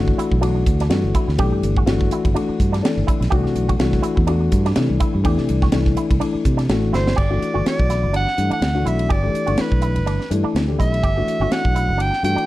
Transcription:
Already playing: fingered electric bass G1, grand piano E3 A3 D4 F#4
0.08 kick
0.18 clean electric guitar E4, hi-hat pedal, ride
0.32 fingered electric bass B1, kick
0.41 grand piano E3 A3 D4 F#4, clean electric guitar D4, ride
0.66 fingered electric bass D2, kick, hi-hat pedal, ride
0.80 clean electric guitar D4, snare, ride
0.89 fingered electric bass G2, grand piano E3 A3 D4 F#4, snare, ride
1.04 fingered electric bass G1
1.15 clean electric guitar E4, kick, hi-hat pedal, ride
1.28 fingered electric bass D2, snare
1.38 fingered electric bass B1, grand piano E3 A3 D4 G4, clean electric guitar G4, kick, ride
1.52 fingered electric bass G2
1.63 fingered electric bass G1, hi-hat pedal, ride
1.77 clean electric guitar F#4, kick
1.86 fingered electric bass G1, grand piano E3 A3 D4 F#4, snare, ride
2.01 kick
2.11 clean electric guitar E4, hi-hat pedal, ride
2.25 fingered electric bass G1, kick, ride
2.34 grand piano E3 A3 D4 F#4, clean electric guitar D4, ride
2.49 muted fingered electric bass stroke
2.60 fingered electric bass G2, kick, hi-hat pedal, ride
2.72 clean electric guitar D4, snare, ride
2.82 grand piano E3 A3 D4 A4 D5, snare, ride
2.97 fingered electric bass G1
3.07 clean electric guitar E4, kick, hi-hat pedal, ride
3.21 fingered electric bass B1, snare, ride
3.30 fingered electric bass C2, grand piano E3 A3 D4 F#4, clean electric guitar G4, kick, ride
3.45 fingered electric bass C3, snare
3.55 fingered electric bass B1, hi-hat pedal, ride
3.68 clean electric guitar F#4, kick, ride
3.79 fingered electric bass C2, grand piano E3 A3 D4 F#4, snare, ride
3.93 kick, snare
4.02 clean electric guitar E4, hi-hat pedal, ride
4.17 fingered electric bass E2, kick
4.27 grand piano E3 A3 D4 F#4, clean electric guitar D4, ride
4.52 fingered electric bass G2, kick, hi-hat pedal, ride
4.66 clean electric guitar D4, snare, ride
4.76 fingered electric bass C3, grand piano E3 A3 D4 E4, snare, ride
4.90 fingered electric bass C2
5.00 clean electric guitar E4, kick, hi-hat pedal, ride
5.15 fingered electric bass G2
5.24 fingered electric bass E2, grand piano E3 A3 D4 E4, clean electric guitar G4, kick, ride
5.38 fingered electric bass C3, snare
5.49 fingered electric bass C2, hi-hat pedal, ride
5.62 clean electric guitar F#4, kick, snare
5.72 fingered electric bass C2, grand piano E3 A3 D4 E4, snare, ride
5.86 kick, snare
5.97 clean electric guitar E4, hi-hat pedal, ride
6.10 fingered electric bass C2, kick, ride
6.20 grand piano E3 A3 D4 E4, clean electric guitar D4, ride
6.35 muted fingered electric bass stroke
6.45 fingered electric bass C3, kick, hi-hat pedal, ride
6.57 clean electric guitar D4, snare, ride
6.69 fingered electric bass A1, grand piano E3 A3 D4 F#4, snare, ride
6.93 fingered electric bass G1, clean electric guitar E4, soprano saxophone C5, snare, hi-hat pedal
7.07 snare
7.16 fingered electric bass G1, clean electric guitar G4, soprano saxophone D5, kick, crash
7.30 grand piano E3 A3 D4 F#4
7.42 hi-hat pedal, ride
7.54 fingered electric bass G1, grand piano E3 A3 D4 F#4, clean electric guitar F#4
7.66 soprano saxophone D5, snare, ride
7.79 fingered electric bass B1, kick
7.89 clean electric guitar E4, snare, hi-hat pedal, ride
8.04 fingered electric bass G1
8.13 clean electric guitar D4, soprano saxophone F#5, ride
8.28 snare
8.37 fingered electric bass G2, grand piano E3 A3 D4 E4, hi-hat pedal, ride
8.50 clean electric guitar D4, soprano saxophone F#5, muted fingered electric bass stroke, ride
8.61 fingered electric bass D2, snare, ride
8.75 grand piano E3 A3 D4 F#4
8.85 fingered electric bass B1, clean electric guitar E4, soprano saxophone E5, hi-hat pedal, ride
8.99 ride
9.09 fingered electric bass G1, clean electric guitar G4, soprano saxophone D5, kick, ride
9.23 grand piano E3 A3 D4 G4
9.34 muted fingered electric bass stroke, hi-hat pedal, ride
9.46 fingered electric bass G1, grand piano E3 A3 D4 E4, clean electric guitar F#4, ride
9.58 soprano saxophone B4, muted fingered electric bass stroke, snare, ride
9.72 fingered electric bass B1, kick
9.82 clean electric guitar E4, hi-hat pedal, ride
9.96 fingered electric bass G1, ride
10.06 clean electric guitar D4, ride
10.21 snare
10.30 fingered electric bass G2, grand piano E3 A3 D4 E4, hi-hat pedal, ride
10.44 clean electric guitar D4, muted fingered electric bass stroke
10.55 fingered electric bass D2, snare, ride
10.68 grand piano E3 A3 D4 G4
10.79 fingered electric bass B1, clean electric guitar E4, soprano saxophone E5, kick, hi-hat pedal, ride
10.94 ride
11.03 fingered electric bass G1, clean electric guitar G4, kick, ride
11.17 grand piano E3 A3 D4 F#4
11.27 muted fingered electric bass stroke, hi-hat pedal, ride
11.40 fingered electric bass G1, grand piano E3 A3 D4 F#4, clean electric guitar F#4
11.52 soprano saxophone F#5, snare, ride
11.65 fingered electric bass B1, kick
11.75 clean electric guitar E4, hi-hat pedal, ride
11.88 fingered electric bass G1
11.98 clean electric guitar D4, soprano saxophone G5, ride
12.13 snare
12.23 fingered electric bass G2, grand piano E3 A3 D4 F#4, soprano saxophone G5, hi-hat pedal, ride
12.36 clean electric guitar D4, muted fingered electric bass stroke, ride

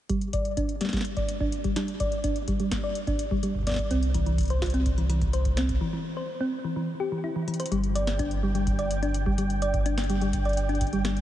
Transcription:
0.10 synth arpeggio sound G3, kick, closed hi-hat
0.21 closed hi-hat
0.33 synth arpeggio sound D5, kick, closed hi-hat
0.45 closed hi-hat
0.57 synth arpeggio sound D4, kick, closed hi-hat
0.69 closed hi-hat
0.81 synth arpeggio sound G3, snare, closed hi-hat
0.85 snare
0.89 snare
0.93 synth arpeggio sound G3, kick, snare, closed hi-hat
0.97 snare
1.01 snare, closed hi-hat
1.17 synth arpeggio sound D5, kick, closed hi-hat
1.29 closed hi-hat
1.40 synth arpeggio sound D4, kick
1.52 closed hi-hat
1.64 synth arpeggio sound G3, kick, closed hi-hat
1.76 synth arpeggio sound G3, snare, closed hi-hat
1.88 closed hi-hat
2.00 synth arpeggio sound D5, kick, closed hi-hat
2.12 closed hi-hat
2.24 synth arpeggio sound D4, kick, closed hi-hat
2.36 closed hi-hat
2.48 synth arpeggio sound G3, kick, closed hi-hat
2.60 synth arpeggio sound G3, closed hi-hat
2.71 kick, snare, closed hi-hat
2.84 synth arpeggio sound D5
2.95 closed hi-hat
3.07 synth arpeggio sound D4, kick, closed hi-hat
3.19 closed hi-hat
3.31 synth arpeggio sound G3, kick
3.43 synth arpeggio sound G3, closed hi-hat
3.55 kick
3.59 kick
3.63 kick, snare, closed hi-hat
3.67 synth arpeggio sound D5, kick, snare
3.71 kick, snare
3.74 kick, snare
3.76 kick, snare, closed hi-hat
3.91 sub bass C2, synth arpeggio sound C4, closed hi-hat
4.03 closed hi-hat
4.14 synth arpeggio sound E3, kick, closed hi-hat
4.26 synth arpeggio sound E3, closed hi-hat
4.38 kick, closed hi-hat
4.41 closed hi-hat
4.43 closed hi-hat
4.45 closed hi-hat
4.48 closed hi-hat
4.50 synth arpeggio sound C5, closed hi-hat
4.62 kick, snare, closed hi-hat
4.66 closed hi-hat
4.70 closed hi-hat
4.74 synth arpeggio sound C4, closed hi-hat
4.86 kick, closed hi-hat
4.98 synth arpeggio sound E3, closed hi-hat
5.10 synth arpeggio sound E3, closed hi-hat
5.21 kick, closed hi-hat
5.33 synth arpeggio sound C5, closed hi-hat
5.45 kick, closed hi-hat
5.57 synth arpeggio sound C4, snare, closed hi-hat
5.69 kick, closed hi-hat
5.81 synth arpeggio sound E3
5.93 synth arpeggio sound E3
6.17 synth arpeggio sound C5
6.41 synth arpeggio sound C4
6.65 synth arpeggio sound E3
6.76 synth arpeggio sound E3
7.00 synth arpeggio sound G4
7.12 synth arpeggio sound E3
7.24 synth arpeggio sound E4
7.36 synth arpeggio sound E3
7.48 synth arpeggio sound E3, closed hi-hat
7.54 closed hi-hat
7.60 synth arpeggio sound C5, closed hi-hat
7.66 closed hi-hat
7.72 sub bass G1, synth arpeggio sound G3, synth texture G5, closed hi-hat
7.84 closed hi-hat
7.95 synth arpeggio sound D5, closed hi-hat
8.07 snare, closed hi-hat
8.19 synth arpeggio sound D4, kick, closed hi-hat
8.31 closed hi-hat
8.43 synth arpeggio sound G3
8.55 synth arpeggio sound G3, closed hi-hat
8.67 kick, closed hi-hat
8.79 synth arpeggio sound D5, closed hi-hat
8.91 closed hi-hat
9.03 synth arpeggio sound D4, closed hi-hat
9.14 closed hi-hat
9.26 synth arpeggio sound G3, kick
9.38 synth arpeggio sound G3, closed hi-hat
9.50 closed hi-hat
9.62 synth arpeggio sound D5, closed hi-hat
9.74 kick, closed hi-hat
9.86 synth arpeggio sound D4, closed hi-hat
9.98 snare
10.04 closed hi-hat
10.10 synth arpeggio sound G3, closed hi-hat
10.21 synth arpeggio sound G3, closed hi-hat
10.33 kick, closed hi-hat
10.45 synth arpeggio sound D5, closed hi-hat
10.49 closed hi-hat
10.53 closed hi-hat
10.57 closed hi-hat
10.69 synth arpeggio sound D4, closed hi-hat
10.75 closed hi-hat
10.81 kick, closed hi-hat
10.87 closed hi-hat
10.93 synth arpeggio sound G3, closed hi-hat
11.05 synth arpeggio sound G3, snare, closed hi-hat
11.17 closed hi-hat

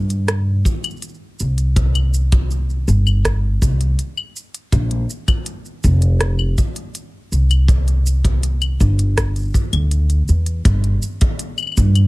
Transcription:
Already playing: upright bass G2
0.10 closed hi-hat, shaker
0.28 cross-stick, closed hi-hat, shaker
0.65 kick, shaker
0.84 closed hi-hat, claves, shaker
0.90 shaker
0.97 shaker
1.02 closed hi-hat, shaker
1.09 shaker
1.14 shaker
1.39 upright bass C2, shaker
1.58 closed hi-hat, shaker
1.76 kick, closed hi-hat, shaker
1.95 closed hi-hat, claves
2.14 shaker
2.32 kick, closed hi-hat, shaker
2.51 shaker
2.70 shaker
2.88 upright bass G1, shaker
3.07 claves, shaker
3.25 kick, cross-stick, closed hi-hat, shaker
3.62 upright bass C2, kick, shaker
3.81 closed hi-hat, shaker
3.99 closed hi-hat, shaker
4.17 claves
4.36 shaker
4.54 closed hi-hat, shaker
4.72 upright bass A#1, kick, closed hi-hat, shaker
4.91 closed hi-hat
5.10 shaker
5.28 kick, closed hi-hat, claves, shaker
5.46 closed hi-hat, shaker
5.65 shaker
5.84 upright bass F1, kick, shaker
6.02 closed hi-hat, shaker
6.21 cross-stick, closed hi-hat, shaker
6.39 claves
6.58 kick, shaker
6.76 closed hi-hat, shaker
6.95 closed hi-hat, shaker
7.32 upright bass C2, shaker
7.51 closed hi-hat, claves, shaker
7.68 kick, closed hi-hat, shaker
7.88 closed hi-hat, shaker
8.06 shaker
8.25 kick, closed hi-hat, shaker
8.43 closed hi-hat, shaker
8.62 closed hi-hat, claves, shaker
8.80 upright bass G1, kick, shaker
8.99 closed hi-hat, shaker
9.18 kick, cross-stick, closed hi-hat, shaker
9.36 closed hi-hat, shaker
9.38 shaker
9.40 shaker
9.42 shaker
9.45 shaker
9.47 shaker
9.50 shaker
9.52 kick, shaker
9.55 shaker
9.73 upright bass D2, closed hi-hat, claves, shaker
9.91 closed hi-hat, shaker
10.10 closed hi-hat, shaker
10.28 upright bass E2, shaker
10.46 closed hi-hat, shaker
10.65 upright bass G1, kick, closed hi-hat, shaker
10.84 closed hi-hat
11.02 shaker
11.21 kick, closed hi-hat, shaker
11.39 closed hi-hat, shaker
11.58 claves, shaker
11.63 claves
11.67 claves
11.72 claves
11.77 upright bass G2, kick, shaker
11.95 closed hi-hat, claves, shaker

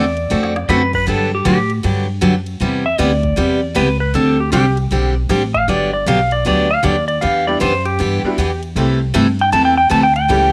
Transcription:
Already playing: upright bass E2, electric slide guitar D5
0.17 ride
0.30 upright bass F2, steel-string acoustic guitar D3 A3 C4 F#4 A4
0.43 snare
0.56 snare
0.69 upright bass F#2, steel-string acoustic guitar D3 A3 C4 F#4 A4, electric slide guitar B4, snare, hi-hat pedal
0.93 electric slide guitar B4, kick, crash
1.07 upright bass G2, steel-string acoustic guitar D3 F#3 B3 D4 G4, electric slide guitar A4
1.35 electric slide guitar G4
1.45 upright bass A2, steel-string acoustic guitar D3 F#3 B3 D4 G4, electric slide guitar G4, hi-hat pedal, ride
1.70 ride
1.83 upright bass G2, steel-string acoustic guitar D3 F#3 B3 D4 G4, ride
2.21 upright bass F#2, steel-string acoustic guitar D3 F#3 B3 D4 G4, hi-hat pedal, ride
2.46 ride
2.60 upright bass E2, steel-string acoustic guitar C3 G3 B3 E4 G4, ride
2.86 electric slide guitar E5
2.98 upright bass D2, steel-string acoustic guitar C3 G3 B3 E4 G4, electric slide guitar D5, hi-hat pedal, ride
3.23 kick, ride
3.36 upright bass E2, steel-string acoustic guitar C3 G3 B3 E4 G4, ride
3.75 upright bass C#2, steel-string acoustic guitar C3 G3 B3 E4 G4, electric slide guitar B4, hi-hat pedal, ride
4.00 electric slide guitar B4
4.14 upright bass D2, steel-string acoustic guitar D3 G3 C4 D4 G4, electric slide guitar A4, ride
4.40 electric slide guitar G4
4.52 upright bass C2, steel-string acoustic guitar D3 G3 C4 D4 G4, electric slide guitar G4, hi-hat pedal, ride
4.77 ride
4.91 upright bass B1, steel-string acoustic guitar D3 G3 C4 D4 G4, ride
5.29 upright bass A1, steel-string acoustic guitar D3 G3 C4 D4 G4, snare, hi-hat pedal, ride
5.54 electric slide guitar F5, kick, ride
5.68 upright bass G1, steel-string acoustic guitar D3 F#3 B3 D4 G4, electric slide guitar D5, ride
5.93 electric slide guitar D5
6.06 upright bass B1, steel-string acoustic guitar D3 F#3 B3 D4 G4, electric slide guitar F5, hi-hat pedal, ride
6.31 electric slide guitar D5, ride
6.45 upright bass D2, steel-string acoustic guitar D3 F#3 B3 D4 G4, electric slide guitar D5, ride
6.71 electric slide guitar F5
6.83 upright bass D#2, steel-string acoustic guitar D3 F#3 B3 D4 G4, electric slide guitar D5, hi-hat pedal, ride
7.08 electric slide guitar D5, ride
7.21 upright bass E2, steel-string acoustic guitar E3 B3 D4 G4, electric slide guitar F5, ride
7.47 honky-tonk piano G3 B3 D4 E4 G4, electric slide guitar D5
7.60 upright bass F#2, steel-string acoustic guitar E3 B3 D4 G4, electric slide guitar C5, hi-hat pedal, ride
7.85 electric slide guitar G4, ride
7.99 upright bass G2, steel-string acoustic guitar E3 B3 D4 G4, ride
8.23 honky-tonk piano G3 B3 D4 E4 F#4, muted upright bass stroke
8.38 upright bass E2, steel-string acoustic guitar E3 B3 D4 G4, hi-hat pedal, ride
8.63 ride
8.76 upright bass C2, steel-string acoustic guitar C3 E3 A3 E4 A4, honky-tonk piano G3 A3 C4 E4 G4, ride
9.14 upright bass G2, steel-string acoustic guitar C3 E3 A3 E4 A4, hi-hat pedal, ride
9.39 electric slide guitar G5, ride
9.52 upright bass E2, steel-string acoustic guitar C3 E3 A3 E4 A4, electric slide guitar A5, ride
9.65 electric slide guitar G5
9.78 electric slide guitar G5
9.90 upright bass D2, steel-string acoustic guitar C3 E3 A3 E4 A4, electric slide guitar A5, hi-hat pedal, ride
10.03 electric slide guitar G5
10.16 electric slide guitar G5, ride
10.28 upright bass C#2, steel-string acoustic guitar C#3 E3 A3 C#4 G4, honky-tonk piano G3 A3 C#4 E4 G4, ride

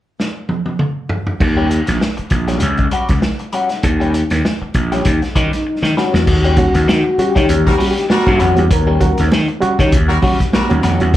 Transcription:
0.20 snare
0.49 high tom
0.66 high tom
0.79 mid tom
1.09 floor tom
1.27 floor tom
1.40 slap bass D#2, muted clean electric guitar stroke, kick, crash
1.57 clean electric guitar G3 C#4 G4
1.70 muted clean electric guitar stroke, closed hi-hat
1.86 slap bass A#1, muted clean electric guitar stroke, snare, closed hi-hat
2.00 muted clean electric guitar stroke, snare
2.17 muted clean electric guitar stroke, muted slap bass stroke, closed hi-hat
2.30 slap bass A#1, kick, closed hi-hat
2.48 clean electric guitar G3 C#4 G4, snare, closed hi-hat
2.60 slap bass C#2, closed hi-hat
2.77 muted clean electric guitar stroke, kick, closed hi-hat
2.91 clean electric guitar G3 C#4 F#4, closed hi-hat
3.09 slap bass C#2, muted clean electric guitar stroke, kick, snare, closed hi-hat
3.22 muted clean electric guitar stroke, snare
3.39 muted clean electric guitar stroke, closed hi-hat
3.52 clean electric guitar G3 C#4 F#4, closed hi-hat
3.69 muted clean electric guitar stroke, snare, closed hi-hat
3.83 slap bass D#2, muted clean electric guitar stroke, kick, closed hi-hat
4.00 clean electric guitar G3 C#4 G4, closed hi-hat
4.14 muted clean electric guitar stroke, closed hi-hat
4.30 slap bass D#2, muted clean electric guitar stroke, snare, closed hi-hat
4.45 muted clean electric guitar stroke, snare
4.62 muted slap bass stroke, muted clean electric guitar stroke
4.74 slap bass A#1, kick, closed hi-hat
4.92 clean electric guitar G3 C#4 G4, snare, closed hi-hat
5.05 slap bass D#2, kick, closed hi-hat
5.22 muted clean electric guitar stroke, snare, closed hi-hat
5.35 slap bass D#3, clean electric guitar G3 C#4 F#4, tonewheel organ D#4, kick, closed hi-hat
5.53 muted clean electric guitar stroke, snare, closed hi-hat
5.67 muted clean electric guitar stroke
5.83 slap bass D#3, muted clean electric guitar stroke, snare
5.97 clean electric guitar G3 C#4 F#4, tonewheel organ F#4, snare
6.14 slap bass E2, muted clean electric guitar stroke, snare
6.27 slap bass D#2, reed electric piano D#3, muted clean electric guitar stroke, kick, crash, muted conga
6.44 clean electric guitar G3 C#4 G4, closed hi-hat
6.57 reed electric piano G3 C#4 F#4, muted clean electric guitar stroke, kick, closed hi-hat, muted conga
6.74 slap bass D#2, reed electric piano C#4 F#4, muted clean electric guitar stroke, snare, closed hi-hat
6.87 slap bass D#3, muted clean electric guitar stroke, snare, high conga
7.04 muted clean electric guitar stroke
7.18 reed electric piano G3 C#4 F#4, tonewheel organ G4, muted slap bass stroke, closed hi-hat
7.35 slap bass D#3, clean electric guitar G3 C#4 G4, kick, snare, closed hi-hat
7.49 slap bass D#2, reed electric piano C#4 F#4, closed hi-hat, muted conga, low conga
7.65 reed electric piano D#3, horn section G3 F#4 A#4, muted clean electric guitar stroke, kick, snare, closed hi-hat
7.78 clean electric guitar G3 C#4 F#4, reed electric piano G3 C#4 F#4, open hi-hat, muted conga
7.91 tonewheel organ G4
7.96 muted clean electric guitar stroke, snare, closed hi-hat
8.09 horn section G3 F#4 A#4, tonewheel organ F#4, muted clean electric guitar stroke, snare, high conga
8.26 slap bass G2, reed electric piano G3 C#4 F#4, muted clean electric guitar stroke, kick, closed hi-hat, high conga
8.39 slap bass F2, reed electric piano D#3, clean electric guitar G3 C#4 F#4, closed hi-hat
8.56 slap bass E2, reed electric piano G3 C#4 F#4, tonewheel organ G4, muted clean electric guitar stroke, closed hi-hat, high conga
8.70 slap bass D#2, reed electric piano D#3, tonewheel organ A#4, muted clean electric guitar stroke, kick, closed hi-hat, muted conga
8.87 clean electric guitar G3 C#4 G4
9.00 reed electric piano G3 C#4 F#4, muted clean electric guitar stroke, kick, closed hi-hat, muted conga
9.18 slap bass D#2, reed electric piano C#4 F#4, muted clean electric guitar stroke, snare, closed hi-hat
9.32 slap bass D#3, muted clean electric guitar stroke, snare, high conga
9.48 muted clean electric guitar stroke, closed hi-hat
9.61 reed electric piano G3 C#4 F#4, muted slap bass stroke, closed hi-hat
9.79 slap bass D#3, clean electric guitar G3 C#4 G4, kick, snare, closed hi-hat
9.91 slap bass D#2, reed electric piano C#4 F#4, kick, closed hi-hat, muted conga
10.08 reed electric piano D#3, horn section G3 F#4 A#4, muted clean electric guitar stroke, closed hi-hat
10.22 reed electric piano G3 C#4 F#4, clean electric guitar G3 C#4 F#4, kick, open hi-hat, muted conga, low conga
10.40 muted clean electric guitar stroke, kick, snare, closed hi-hat
10.53 horn section G3 F#4 A#4, muted clean electric guitar stroke, snare, high conga
10.69 slap bass D#2, reed electric piano G3 C#4 F#4, muted clean electric guitar stroke, closed hi-hat, high conga
10.83 slap bass F2, reed electric piano D#3, clean electric guitar G3 C#4 F#4, snare, closed hi-hat
11.00 slap bass E2, reed electric piano G3 C#4 F#4, muted clean electric guitar stroke, closed hi-hat, high conga
11.14 muted clean electric guitar stroke, kick

